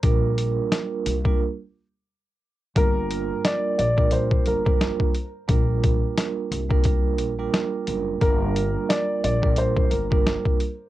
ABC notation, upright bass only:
X:1
M:4/4
L:1/16
Q:"Swing 16ths" 1/4=88
K:Gm
V:1 name="Upright bass" clef=bass
B,,,4 z2 C,,2 z8 | G,,,4 z2 B,,,4 G,,,3 z3 | B,,,4 z2 C,,4 B,,,2 z2 ^F,,,2 | G,,,4 z2 B,,,4 G,,,3 z3 |]